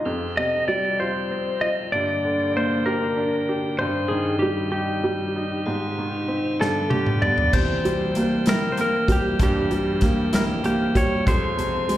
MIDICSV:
0, 0, Header, 1, 6, 480
1, 0, Start_track
1, 0, Tempo, 623053
1, 38, Time_signature, 6, 3, 24, 8
1, 9225, End_track
2, 0, Start_track
2, 0, Title_t, "Electric slide guitar"
2, 0, Program_c, 0, 29
2, 288, Note_on_c, 0, 75, 86
2, 519, Note_off_c, 0, 75, 0
2, 522, Note_on_c, 0, 74, 77
2, 768, Note_off_c, 0, 74, 0
2, 769, Note_on_c, 0, 72, 70
2, 1242, Note_on_c, 0, 75, 85
2, 1260, Note_off_c, 0, 72, 0
2, 1306, Note_off_c, 0, 75, 0
2, 1481, Note_on_c, 0, 74, 76
2, 1975, Note_off_c, 0, 74, 0
2, 1978, Note_on_c, 0, 72, 73
2, 2201, Note_on_c, 0, 70, 69
2, 2217, Note_off_c, 0, 72, 0
2, 2712, Note_off_c, 0, 70, 0
2, 2917, Note_on_c, 0, 72, 82
2, 3146, Note_on_c, 0, 68, 68
2, 3168, Note_off_c, 0, 72, 0
2, 3380, Note_off_c, 0, 68, 0
2, 3383, Note_on_c, 0, 67, 64
2, 3616, Note_off_c, 0, 67, 0
2, 3634, Note_on_c, 0, 67, 60
2, 5092, Note_on_c, 0, 69, 67
2, 5289, Note_off_c, 0, 67, 0
2, 5312, Note_off_c, 0, 69, 0
2, 5318, Note_on_c, 0, 67, 72
2, 5560, Note_on_c, 0, 74, 81
2, 5568, Note_off_c, 0, 67, 0
2, 5805, Note_on_c, 0, 72, 88
2, 5810, Note_off_c, 0, 74, 0
2, 6538, Note_off_c, 0, 72, 0
2, 6541, Note_on_c, 0, 70, 77
2, 6720, Note_on_c, 0, 72, 58
2, 6724, Note_off_c, 0, 70, 0
2, 6769, Note_off_c, 0, 72, 0
2, 6786, Note_on_c, 0, 70, 82
2, 7022, Note_off_c, 0, 70, 0
2, 7026, Note_on_c, 0, 67, 77
2, 7256, Note_off_c, 0, 67, 0
2, 7265, Note_on_c, 0, 67, 73
2, 7975, Note_on_c, 0, 70, 75
2, 7995, Note_off_c, 0, 67, 0
2, 8038, Note_off_c, 0, 70, 0
2, 8209, Note_on_c, 0, 67, 74
2, 8450, Note_on_c, 0, 73, 82
2, 8453, Note_off_c, 0, 67, 0
2, 8685, Note_off_c, 0, 73, 0
2, 8688, Note_on_c, 0, 72, 84
2, 9225, Note_off_c, 0, 72, 0
2, 9225, End_track
3, 0, Start_track
3, 0, Title_t, "Steel-string acoustic guitar"
3, 0, Program_c, 1, 25
3, 5805, Note_on_c, 1, 52, 68
3, 6047, Note_on_c, 1, 60, 51
3, 6290, Note_on_c, 1, 58, 44
3, 6533, Note_on_c, 1, 67, 60
3, 6766, Note_off_c, 1, 60, 0
3, 6769, Note_on_c, 1, 60, 53
3, 7001, Note_off_c, 1, 67, 0
3, 7010, Note_on_c, 1, 67, 53
3, 7237, Note_off_c, 1, 52, 0
3, 7246, Note_on_c, 1, 52, 79
3, 7484, Note_off_c, 1, 60, 0
3, 7487, Note_on_c, 1, 60, 53
3, 7718, Note_off_c, 1, 58, 0
3, 7727, Note_on_c, 1, 58, 47
3, 7958, Note_off_c, 1, 67, 0
3, 7967, Note_on_c, 1, 67, 66
3, 8200, Note_off_c, 1, 60, 0
3, 8203, Note_on_c, 1, 60, 54
3, 8435, Note_off_c, 1, 67, 0
3, 8445, Note_on_c, 1, 67, 54
3, 8684, Note_off_c, 1, 52, 0
3, 8688, Note_on_c, 1, 53, 80
3, 8731, Note_off_c, 1, 67, 0
3, 8732, Note_off_c, 1, 58, 0
3, 8926, Note_off_c, 1, 60, 0
3, 8929, Note_on_c, 1, 60, 49
3, 9167, Note_on_c, 1, 56, 44
3, 9225, Note_off_c, 1, 53, 0
3, 9225, Note_off_c, 1, 56, 0
3, 9225, Note_off_c, 1, 60, 0
3, 9225, End_track
4, 0, Start_track
4, 0, Title_t, "Tonewheel organ"
4, 0, Program_c, 2, 16
4, 41, Note_on_c, 2, 53, 47
4, 43, Note_on_c, 2, 60, 43
4, 44, Note_on_c, 2, 67, 53
4, 1468, Note_off_c, 2, 53, 0
4, 1469, Note_off_c, 2, 60, 0
4, 1485, Note_on_c, 2, 50, 52
4, 1489, Note_on_c, 2, 58, 45
4, 2897, Note_off_c, 2, 67, 0
4, 2911, Note_off_c, 2, 50, 0
4, 2913, Note_off_c, 2, 58, 0
4, 2916, Note_on_c, 2, 51, 50
4, 2919, Note_on_c, 2, 43, 54
4, 2921, Note_on_c, 2, 79, 53
4, 2925, Note_on_c, 2, 60, 46
4, 4348, Note_off_c, 2, 43, 0
4, 4349, Note_off_c, 2, 79, 0
4, 4358, Note_on_c, 2, 56, 47
4, 4360, Note_on_c, 2, 65, 50
4, 5060, Note_off_c, 2, 51, 0
4, 5064, Note_off_c, 2, 60, 0
4, 5072, Note_off_c, 2, 65, 0
4, 5074, Note_off_c, 2, 56, 0
4, 5081, Note_on_c, 2, 65, 55
4, 5084, Note_on_c, 2, 50, 50
4, 5087, Note_on_c, 2, 55, 46
4, 5088, Note_on_c, 2, 59, 45
4, 5795, Note_off_c, 2, 65, 0
4, 5797, Note_off_c, 2, 50, 0
4, 5799, Note_off_c, 2, 55, 0
4, 5799, Note_off_c, 2, 59, 0
4, 5816, Note_on_c, 2, 52, 52
4, 5817, Note_on_c, 2, 67, 58
4, 5820, Note_on_c, 2, 58, 43
4, 5821, Note_on_c, 2, 60, 49
4, 8659, Note_off_c, 2, 52, 0
4, 8660, Note_off_c, 2, 67, 0
4, 8661, Note_off_c, 2, 58, 0
4, 8693, Note_on_c, 2, 53, 57
4, 8694, Note_on_c, 2, 56, 54
4, 8698, Note_on_c, 2, 68, 59
4, 9225, Note_off_c, 2, 53, 0
4, 9225, Note_off_c, 2, 56, 0
4, 9225, Note_off_c, 2, 60, 0
4, 9225, Note_off_c, 2, 68, 0
4, 9225, End_track
5, 0, Start_track
5, 0, Title_t, "Upright piano"
5, 0, Program_c, 3, 0
5, 0, Control_c, 3, 64, 127
5, 44, Note_on_c, 3, 41, 54
5, 46, Control_c, 3, 64, 0
5, 186, Control_c, 3, 64, 127
5, 286, Note_on_c, 3, 48, 42
5, 527, Note_on_c, 3, 55, 42
5, 764, Note_on_c, 3, 65, 49
5, 1001, Note_on_c, 3, 60, 42
5, 1216, Note_off_c, 3, 48, 0
5, 1228, Note_off_c, 3, 65, 0
5, 1240, Note_on_c, 3, 65, 45
5, 1453, Note_off_c, 3, 41, 0
5, 1456, Note_off_c, 3, 55, 0
5, 1467, Note_off_c, 3, 60, 0
5, 1473, Note_off_c, 3, 65, 0
5, 1491, Control_c, 3, 64, 0
5, 1491, Note_on_c, 3, 43, 55
5, 1635, Control_c, 3, 64, 127
5, 1731, Note_on_c, 3, 50, 43
5, 1968, Note_on_c, 3, 58, 43
5, 2208, Note_on_c, 3, 67, 52
5, 2443, Note_on_c, 3, 62, 49
5, 2659, Note_off_c, 3, 50, 0
5, 2677, Note_off_c, 3, 67, 0
5, 2688, Note_on_c, 3, 67, 45
5, 2897, Note_off_c, 3, 43, 0
5, 2898, Note_off_c, 3, 58, 0
5, 2909, Note_off_c, 3, 62, 0
5, 2919, Note_off_c, 3, 67, 0
5, 2934, Control_c, 3, 64, 0
5, 2934, Note_on_c, 3, 43, 58
5, 3088, Control_c, 3, 64, 127
5, 3160, Note_on_c, 3, 51, 45
5, 3406, Note_on_c, 3, 55, 41
5, 3643, Note_on_c, 3, 63, 45
5, 3869, Note_off_c, 3, 55, 0
5, 3881, Note_on_c, 3, 55, 48
5, 4094, Note_off_c, 3, 51, 0
5, 4118, Note_off_c, 3, 63, 0
5, 4130, Note_on_c, 3, 63, 47
5, 4339, Note_off_c, 3, 43, 0
5, 4348, Note_off_c, 3, 55, 0
5, 4360, Note_off_c, 3, 63, 0
5, 4365, Note_on_c, 3, 44, 51
5, 4375, Control_c, 3, 64, 0
5, 4515, Control_c, 3, 64, 127
5, 4607, Note_on_c, 3, 51, 45
5, 4840, Note_on_c, 3, 60, 43
5, 5063, Note_off_c, 3, 44, 0
5, 5072, Note_off_c, 3, 51, 0
5, 5075, Note_off_c, 3, 60, 0
5, 5085, Note_on_c, 3, 43, 57
5, 5095, Control_c, 3, 64, 0
5, 5227, Control_c, 3, 64, 127
5, 5323, Note_on_c, 3, 50, 41
5, 5567, Note_on_c, 3, 59, 45
5, 5783, Note_off_c, 3, 43, 0
5, 5789, Note_off_c, 3, 50, 0
5, 5799, Note_off_c, 3, 59, 0
5, 5806, Note_on_c, 3, 48, 57
5, 5816, Control_c, 3, 64, 0
5, 5966, Control_c, 3, 64, 127
5, 6047, Note_on_c, 3, 55, 47
5, 6290, Note_on_c, 3, 58, 46
5, 6524, Note_on_c, 3, 64, 54
5, 6753, Note_off_c, 3, 58, 0
5, 6764, Note_on_c, 3, 58, 50
5, 6977, Note_off_c, 3, 55, 0
5, 6998, Note_on_c, 3, 55, 48
5, 7214, Note_off_c, 3, 48, 0
5, 7238, Note_on_c, 3, 43, 67
5, 7455, Note_off_c, 3, 64, 0
5, 7472, Note_off_c, 3, 55, 0
5, 7484, Note_on_c, 3, 55, 51
5, 7695, Note_off_c, 3, 58, 0
5, 7719, Note_on_c, 3, 58, 50
5, 7957, Note_on_c, 3, 64, 57
5, 8182, Note_off_c, 3, 58, 0
5, 8194, Note_on_c, 3, 58, 53
5, 8414, Note_off_c, 3, 55, 0
5, 8438, Note_on_c, 3, 55, 50
5, 8649, Note_off_c, 3, 43, 0
5, 8658, Note_off_c, 3, 64, 0
5, 8663, Note_off_c, 3, 58, 0
5, 8672, Note_off_c, 3, 55, 0
5, 8677, Note_on_c, 3, 41, 65
5, 8694, Control_c, 3, 64, 0
5, 8822, Control_c, 3, 64, 127
5, 8916, Note_on_c, 3, 48, 55
5, 9159, Note_on_c, 3, 56, 50
5, 9225, Note_off_c, 3, 41, 0
5, 9225, Note_off_c, 3, 48, 0
5, 9225, Note_off_c, 3, 56, 0
5, 9225, End_track
6, 0, Start_track
6, 0, Title_t, "Drums"
6, 5095, Note_on_c, 9, 38, 46
6, 5172, Note_off_c, 9, 38, 0
6, 5320, Note_on_c, 9, 48, 68
6, 5397, Note_off_c, 9, 48, 0
6, 5442, Note_on_c, 9, 47, 55
6, 5519, Note_off_c, 9, 47, 0
6, 5563, Note_on_c, 9, 45, 71
6, 5640, Note_off_c, 9, 45, 0
6, 5683, Note_on_c, 9, 43, 76
6, 5760, Note_off_c, 9, 43, 0
6, 5803, Note_on_c, 9, 36, 83
6, 5804, Note_on_c, 9, 49, 73
6, 5880, Note_off_c, 9, 36, 0
6, 5881, Note_off_c, 9, 49, 0
6, 6050, Note_on_c, 9, 42, 44
6, 6127, Note_off_c, 9, 42, 0
6, 6280, Note_on_c, 9, 42, 57
6, 6357, Note_off_c, 9, 42, 0
6, 6515, Note_on_c, 9, 42, 80
6, 6528, Note_on_c, 9, 38, 101
6, 6592, Note_off_c, 9, 42, 0
6, 6605, Note_off_c, 9, 38, 0
6, 6759, Note_on_c, 9, 42, 52
6, 6836, Note_off_c, 9, 42, 0
6, 6998, Note_on_c, 9, 36, 78
6, 7004, Note_on_c, 9, 42, 59
6, 7075, Note_off_c, 9, 36, 0
6, 7081, Note_off_c, 9, 42, 0
6, 7237, Note_on_c, 9, 42, 71
6, 7239, Note_on_c, 9, 36, 90
6, 7314, Note_off_c, 9, 42, 0
6, 7316, Note_off_c, 9, 36, 0
6, 7479, Note_on_c, 9, 42, 42
6, 7556, Note_off_c, 9, 42, 0
6, 7711, Note_on_c, 9, 42, 54
6, 7719, Note_on_c, 9, 36, 75
6, 7723, Note_on_c, 9, 38, 32
6, 7788, Note_off_c, 9, 42, 0
6, 7796, Note_off_c, 9, 36, 0
6, 7800, Note_off_c, 9, 38, 0
6, 7957, Note_on_c, 9, 42, 82
6, 7969, Note_on_c, 9, 38, 100
6, 8034, Note_off_c, 9, 42, 0
6, 8046, Note_off_c, 9, 38, 0
6, 8198, Note_on_c, 9, 42, 51
6, 8275, Note_off_c, 9, 42, 0
6, 8439, Note_on_c, 9, 36, 74
6, 8442, Note_on_c, 9, 42, 56
6, 8516, Note_off_c, 9, 36, 0
6, 8519, Note_off_c, 9, 42, 0
6, 8681, Note_on_c, 9, 36, 83
6, 8682, Note_on_c, 9, 42, 65
6, 8758, Note_off_c, 9, 36, 0
6, 8759, Note_off_c, 9, 42, 0
6, 8926, Note_on_c, 9, 42, 50
6, 9003, Note_off_c, 9, 42, 0
6, 9161, Note_on_c, 9, 42, 63
6, 9225, Note_off_c, 9, 42, 0
6, 9225, End_track
0, 0, End_of_file